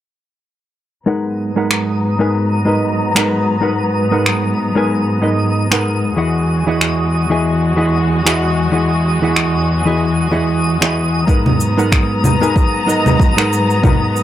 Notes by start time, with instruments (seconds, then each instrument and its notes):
1.06 string section G#2 F#3 B3 A#5, hollow-body jazz guitar G#3 D#4 A#4 B4 F#5, synth texture D#6
1.56 hollow-body jazz guitar G#3 D#4 A#4 B4 F#5
1.71 finger snap
2.19 hollow-body jazz guitar G#3 D#4 A#4 B4 G#5
2.65 hollow-body jazz guitar G#3 D#4 A#4 B4 D#5
3.15 hollow-body jazz guitar G#3 D#4 A#4 B4 F#5, finger snap
3.61 hollow-body jazz guitar G#3 D#4 A#4 B4 F#5
4.11 hollow-body jazz guitar G#3 D#4 A#4 B4 F#5
4.26 finger snap
4.75 hollow-body jazz guitar G#3 D#4 A#4 B4 G#5
5.21 hollow-body jazz guitar G#3 D#4 A#4 B4 D#5
5.71 hollow-body jazz guitar G#3 D#4 A#4 B4 F#5, finger snap
6.16 string section E2 G#3 F#4, hollow-body jazz guitar E3 E4 G#4 D#5 F#5
6.67 hollow-body jazz guitar E3 E4 G#4 D#5 F#5
6.81 finger snap
7.30 hollow-body jazz guitar E3 E4 G#4 D#5 G#5
7.76 hollow-body jazz guitar E3 E4 G#4 D#5 F#5
8.25 hollow-body jazz guitar E3 E4 G#4 D#5 F#5, finger snap
8.72 hollow-body jazz guitar E3 E4 G#4 D#5 F#5
9.22 hollow-body jazz guitar E3 E4 G#4 D#5 F#5
9.36 finger snap
9.85 hollow-body jazz guitar E3 E4 G#4 D#5 G#5
10.31 hollow-body jazz guitar E3 E4 G#4 D#5 F#5
10.81 hollow-body jazz guitar E3 E4 G#4 D#5 F#5, finger snap
11.27 string section G#2 F#3 B3 A#5, hollow-body jazz guitar G#3 D#4 A#4 B4 F#5, kick, cabasa
11.46 low conga
11.60 cabasa
11.77 hollow-body jazz guitar G#3 D#4 A#4 B4 F#5, cabasa
11.92 finger snap, kick, cabasa
12.24 low conga, cabasa
12.41 hollow-body jazz guitar G#3 D#4 A#4 B4 G#5, cabasa
12.56 kick, cabasa
12.86 hollow-body jazz guitar G#3 D#4 A#4 B4 D#5, cabasa
13.06 low conga, cabasa
13.20 kick, cabasa
13.37 hollow-body jazz guitar G#3 D#4 A#4 B4 F#5, finger snap
13.53 cabasa
13.70 cabasa
13.83 hollow-body jazz guitar G#3 D#4 A#4 B4 F#5, kick, low conga, cabasa
14.16 cabasa